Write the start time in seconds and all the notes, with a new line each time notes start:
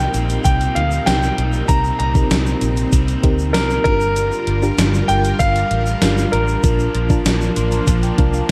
Already playing: A#2 C3 G3 A#3 C4 D#4 G4 A#4 G5
0.14 A#1 G3 C4, closed hi-hat, shaker
0.30 closed hi-hat, shaker
0.44 C2 C3 G3 C4 G5, kick, closed hi-hat, shaker
0.61 closed hi-hat, shaker
0.75 D2 F5, closed hi-hat
0.91 shaker
1.06 C2 G3 C4 D#4 G4 A#4 G5, snare, closed hi-hat, tambourine, shaker
1.23 shaker
1.38 B1, closed hi-hat
1.53 shaker
1.68 C2 C3 G3 C4 D#4 G4 A#4 A#5, kick, closed hi-hat, shaker
1.84 shaker
1.99 C2 A#5, closed hi-hat
2.15 C4 D#4 G4 A#4, kick, shaker
2.31 C2, snare, closed hi-hat, tambourine, shaker
2.46 shaker
2.61 A#1, closed hi-hat, shaker
2.77 closed hi-hat, shaker
2.92 C2 C3 G3 C4, kick, closed hi-hat, shaker
3.08 closed hi-hat, shaker
3.23 D2 C4 D#4 G4 A#4, kick, closed hi-hat
3.39 shaker
3.53 C2 C3 G3 C4 A#4, snare, closed hi-hat, tambourine, shaker
3.70 shaker
3.84 G1 D3 G3 D4 F4 G4 A#4, kick, closed hi-hat
3.88 G2
4.01 shaker
4.16 closed hi-hat, shaker
4.32 shaker
4.47 G1, closed hi-hat
4.62 D4 F4 G4 A#4, shaker
4.78 G1, snare, closed hi-hat, tambourine, shaker
4.94 shaker
5.08 G1 G5, closed hi-hat, shaker
5.24 closed hi-hat, shaker
5.39 G1 G2 D3 G3 F5, kick, closed hi-hat, shaker
5.56 closed hi-hat, shaker
5.71 A1, closed hi-hat
5.86 shaker
6.01 G1 G2 D3 G3 D4 F4 G4 A#4, snare, closed hi-hat, tambourine, shaker
6.18 shaker
6.32 A1 A#4, closed hi-hat
6.48 shaker
6.63 A#1 A#2 F3 A#3 D4 F4 A#4 A5, kick, closed hi-hat, shaker
6.79 shaker
6.95 A#1, closed hi-hat
7.10 D4 F4 A#4 A5, kick, shaker
7.26 A#1, snare, closed hi-hat, tambourine, shaker
7.41 shaker
7.56 A1 F3 A#3 C6, closed hi-hat, shaker
7.72 A#5, closed hi-hat, shaker
7.87 A#1 A#2 F3 A#3 A5, kick, closed hi-hat, shaker
8.03 G5, closed hi-hat, shaker
8.18 C2 D4 F4 A#4 F5 A5, kick, closed hi-hat
8.34 F5, shaker